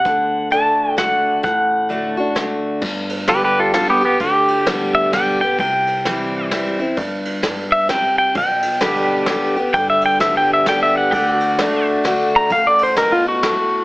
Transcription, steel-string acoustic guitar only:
0.06 D3
0.50 D3 A3 D4 F#4
0.97 D3 A3 D4 F#4
1.43 A2
1.89 D3 A3 D4 F#4
2.17 D4 F#4
2.35 D3 A3 D4 F#4
2.81 G2
3.28 D3 G3 B3 G4
3.74 D3 G3 B3 G4
4.01 B3 G4
4.21 D3
4.66 D3 G3 B3 G4
5.13 D3 G3 B3 G4
5.41 B3 G4
5.60 C3
6.06 E3 G3 C4 E4
6.51 E3 G3 C4 E4
6.79 C4 E4
6.97 G2
7.43 G2
7.91 C3
8.35 B2
8.80 D3 G3 B3 G4
9.28 D3 G3 B3 G4
9.56 B3 G4
9.75 D3
10.21 D3 G3 B3 G4
10.67 D3 G3 B3 G4
11.14 D3
11.59 D3 A3 D4 F#4
12.04 D3 A3 D4 F#4
12.52 A2
12.97 B2
13.44 A2

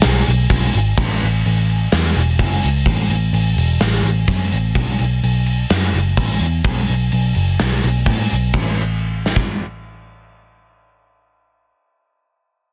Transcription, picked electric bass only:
0.05 B1
0.28 B1
0.51 B1
0.75 G#1
0.98 A1
1.23 A1
1.46 A1
1.92 E2
2.16 E1
2.40 F#1
2.64 C#2
2.86 A1
3.10 A1
3.33 A1
3.56 E1
3.80 A1
4.03 A1
4.28 F#2
4.52 A1
4.76 B1
5.00 B1
5.23 B1
5.71 F#2
5.94 F#1
6.17 A1
6.40 E2
6.65 B1
6.89 B1
7.13 B1
7.36 F#1
7.59 B1
7.84 B1
8.06 A2
8.33 B1
8.54 A1

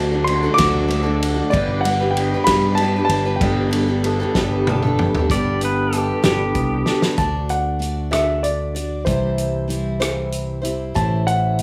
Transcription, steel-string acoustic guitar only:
Already playing: A3 D4
0.00 F#4 A4
0.11 D4 F#4 A4
0.43 D4 F#4 A4
0.57 D3 A3 D4 F#4 A4
0.88 A3 D4 F#4 A4
1.03 D4 F#4 A4
1.34 D4 F#4 A4
1.51 G3 D4 G4 B4
1.84 G3 D4 G4 B4
2.00 D4 G4 B4
2.34 D4 G4 B4
2.48 G3 D4 G4 B4
2.81 G3 D4 G4 B4
2.96 D4 G4 B4
3.25 D4 G4 B4
3.41 G3 B3 D4 G4 A4
3.71 B3 D4 G4 A4
3.88 D4 G4 A4
4.20 D4 G4 A4
4.35 G3 B3 D4 G4 A4
4.67 B3 D4 G4 A4
4.83 D4 G4 A4
5.15 G4 A4
5.19 D4
5.33 G3 B3 D4 G4 A4
5.94 B3 D4 G4 A4
6.22 G3 B3 D4 G4 A4
6.86 D4 G4 A4
7.18 D3 A3 D4 F#4 D5
7.79 A3 D4 F#4 D5
8.11 D3 A3 D4 F#4 D5
8.75 D4 F#4 D5
9.06 C3 E3 G3 C4 E4 C5
9.68 G3 C4 E4 C5
10.00 C3 E3 G3 C4 E4 C5
10.62 G3 C4 E4 C5
10.94 A2 E3 A3 C4 E4 C5
11.59 A3

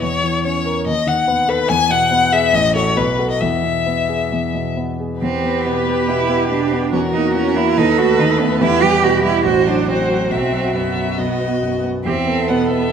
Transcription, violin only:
0.02 C#5
0.44 C#5
0.87 D#5
1.08 F#5
1.49 B4
1.69 G#5
1.91 F#5
2.33 E5
2.54 D#5
2.75 C#5
2.97 B4
3.31 D#5
3.41 E5
5.22 B4
6.93 A#4
7.77 B4
8.62 B4
9.45 C5
9.89 C5
10.31 E5
10.76 E5
11.18 D#5
12.06 E5
12.49 F#5
12.70 E5

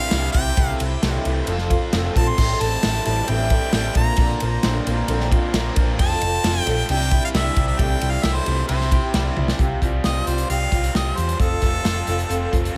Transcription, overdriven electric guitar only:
Already playing: C3 C4 E4
0.12 G3
0.35 C3
0.56 C3
1.02 E3
1.26 A3
1.49 F2
1.71 F4
1.93 A3
2.17 C4
2.38 A2
2.84 E3
3.06 G3
3.27 C4
3.51 E4
3.73 G3
3.96 A#2
4.17 A#2
4.63 D3
4.86 A#3
5.10 C4
5.33 F4
5.54 A#3
5.77 C4
5.99 F2
6.44 F3
6.67 A3
6.89 C3
7.13 E4
7.35 G3
7.57 C3
7.80 C3
8.25 E3
8.47 A3
8.70 C3
8.92 G4
9.15 G3
9.37 C4
9.60 C3
9.82 G3
10.05 F4
10.28 G3
10.50 C4
10.73 F4
10.94 G3
11.17 F3
11.40 F2
11.61 A3
11.84 F4
12.06 A3
12.29 C4
12.52 F4

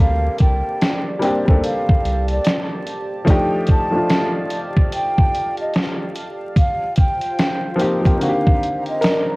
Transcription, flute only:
0.01 F5
0.41 G5
1.64 F5
2.31 D5
3.29 G5
3.70 A5
4.94 G5
5.61 D#5
6.59 F5
7.00 G5
8.23 F5
8.89 D#5

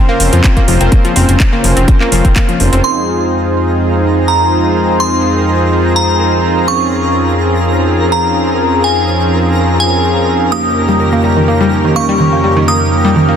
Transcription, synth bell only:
2.84 C6
4.28 A#5
5.00 C6
5.96 A#5
6.68 C#6
8.12 A#5
8.84 G#5
9.80 G#5
10.52 D#6
11.96 C#6
12.68 D#6

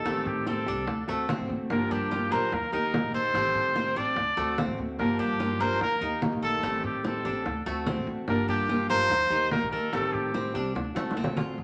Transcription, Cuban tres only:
0.06 A3
0.47 C4
0.68 D4
1.09 A3
1.30 C4
1.91 D4
2.11 F4
2.32 A#3
2.73 D#4
3.14 A4
3.35 A3
3.76 C4
3.96 D4
4.37 A3
4.58 C4
5.19 D4
5.40 F4
5.60 A#3
6.01 D#4
6.43 A4
6.63 A3
7.04 C4
7.25 D4
7.66 A3
7.87 C4
8.48 D4
8.69 F4
8.90 A#3
9.31 D#4
9.72 A4
9.93 A3
10.34 C4
10.55 D4
10.96 A3
11.17 C4
11.37 F4

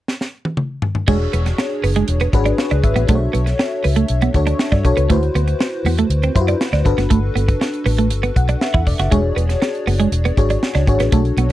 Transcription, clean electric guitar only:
1.08 G#3
1.33 B3
1.46 muted clean electric guitar stroke
1.58 muted clean electric guitar stroke
1.84 B3
1.96 G#3
2.21 B3
2.34 muted clean electric guitar stroke
2.46 D4
2.71 D4
2.84 muted clean electric guitar stroke
2.96 B3
3.09 A3
3.33 B3
3.46 muted clean electric guitar stroke
3.59 muted clean electric guitar stroke
3.84 B3
3.96 A3
4.22 B3
4.35 muted clean electric guitar stroke
4.47 D4
4.72 D4
4.85 muted clean electric guitar stroke
4.97 B3
5.10 A3
5.35 B3
5.48 muted clean electric guitar stroke
5.61 muted clean electric guitar stroke
5.86 B3
5.99 A3
6.24 C4
6.36 muted clean electric guitar stroke
6.48 D4
6.73 D4
6.85 muted clean electric guitar stroke
6.98 B3
7.10 A3
7.36 B3
7.48 muted clean electric guitar stroke
7.61 muted clean electric guitar stroke
7.86 B3
7.99 A3
8.23 B3
8.36 muted clean electric guitar stroke
8.49 D4
8.74 E4
8.87 muted clean electric guitar stroke
9.00 F#4
9.12 G#3
9.36 B3
9.49 muted clean electric guitar stroke
9.62 muted clean electric guitar stroke
9.87 B3
10.00 G#3
10.25 B3
10.38 muted clean electric guitar stroke
10.50 D4
10.75 D4
10.88 muted clean electric guitar stroke
11.00 B3
11.12 A3
11.38 B3

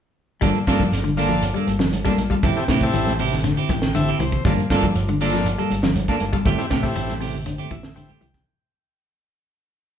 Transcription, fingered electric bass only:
0.42 G1
0.67 G2
0.92 G1
1.68 G1
2.18 A#1
2.43 A1
2.69 A2
2.93 A1
3.69 A1
4.19 C2
4.45 G1
4.71 G2
4.95 G1
5.71 G1
6.21 G1
6.45 A1
6.71 A2
6.96 A1
7.71 A1
8.21 C2

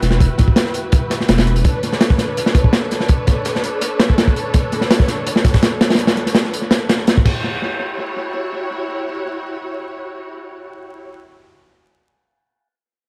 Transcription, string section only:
Already playing: E4 F#4 G4 B4
1.65 D4 A4 C#5
7.25 E4 F#4 G4 C#5

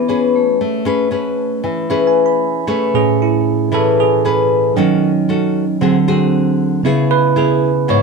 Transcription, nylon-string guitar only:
Already playing: E3
0.09 C#4 G#4 B4
0.61 A3
0.85 C#4 G#4 B4
1.11 C#4 G#4 B4
1.64 E3
1.90 C#4 G#4 B4
2.67 A3 C#4 G#4 B4
3.72 E3 C#4 G#4 B4
4.25 C#4 G#4 B4
4.76 D#3 C#4 F#4 A4
5.29 C#4 F#4 A4
5.81 D3 C4 F#4 G#4
6.08 C4 F#4 G#4
6.85 C#3 B3 E4 G#4
7.36 B3 E4 G#4
7.88 G#2 B3 E4 G#4

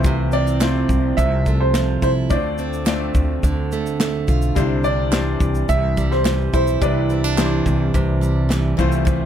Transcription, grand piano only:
Already playing: A3 C4 E4 F4 C5
0.61 A3 C4 E4 F4 C5
2.30 A3 C4 D4 F4 C5
2.86 A3 C4 D4 F4 D5
4.55 G3 C4 D4 E4 C5
5.11 G3 C4 D4 E4 C5
6.81 G3 C4 D4 E4 B4
7.37 G3 C4 D4 E4 C5
8.78 A3 C4 E4 F4 C5

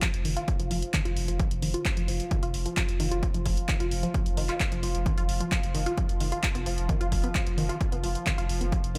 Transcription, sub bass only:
0.14 F1
0.25 F1
0.60 F1
0.71 F1
1.05 F1
1.17 F1
1.28 F1
1.51 F1
1.62 F1
1.97 F1
2.08 F1
2.43 F1
2.54 F1
2.89 F1
3.00 F1
3.12 F1
3.34 F1
3.46 F1
3.80 F1
3.92 F1
4.26 F1
4.37 F1
4.72 F1
4.83 F1
4.95 F1
5.18 F1
5.29 F1
5.63 F1
5.75 F1
6.09 F1
6.20 F1
6.55 F1
6.66 F1
6.78 F1
7.01 F1
7.12 F1
7.47 F1
7.58 F1
7.92 F1
8.04 F1
8.38 F1
8.49 F1
8.61 F1
8.84 F1
8.95 F1

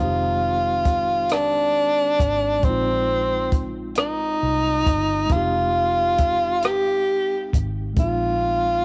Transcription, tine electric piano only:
Already playing: C4 D#4 C5
0.00 D#3 G#3 G4
2.59 G#3 C4
2.66 D#4 F4
5.26 G#3 C4
5.33 D#4 G4
7.93 G#3 C4
8.00 D#4 F4

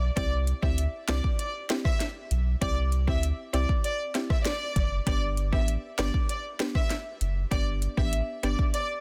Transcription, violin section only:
0.17 D5
0.63 E5
1.09 D5
1.39 D5
1.85 E5
2.62 D5
3.08 E5
3.54 D5
3.84 D5
4.30 E5
4.45 D5
5.07 D5
5.52 E5
5.98 D5
6.29 D5
6.75 E5
7.51 D5
7.98 E5
8.43 D5
8.74 D5

